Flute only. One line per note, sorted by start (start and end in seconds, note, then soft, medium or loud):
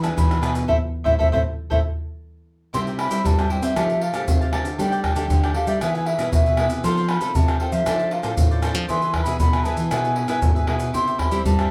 0.03 0.09 A5 medium
0.18 0.54 B5 loud
0.68 0.77 E5 medium
1.05 1.14 E5 loud
1.20 1.28 E5 loud
1.34 1.42 E5 medium
1.72 1.80 E5 medium
2.74 2.80 C6 loud
2.99 3.28 B5 loud
3.26 3.54 A5 loud
3.52 3.65 G5 medium
3.64 4.04 E5 medium
4.03 4.54 F5 medium
4.79 5.03 G5 loud
5.04 5.52 G5 medium
5.55 5.69 F5 medium
5.68 5.81 E5 medium
5.82 5.97 E5 medium
5.95 6.08 G#5 medium
6.06 6.33 E5 medium
6.33 6.69 E5 loud
6.85 7.11 C6 loud
7.10 7.37 B5 loud
7.36 7.60 A5 loud
7.61 7.74 G5 medium
7.72 8.14 E5 loud
8.13 8.64 F5 medium
8.89 9.13 C6 loud
9.23 9.39 B5 loud
9.39 9.66 B5 loud
9.64 9.92 A5 medium
9.91 10.68 G#5 medium
10.95 11.21 C6 loud
11.19 11.45 B5 loud
11.46 11.70 A5 loud